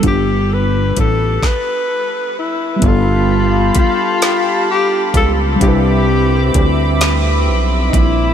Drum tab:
HH |x-x---|x-xx-x|x-xx-x|
SD |---o--|---o--|---o--|
BD |o-oo--|o-o--o|o-o--o|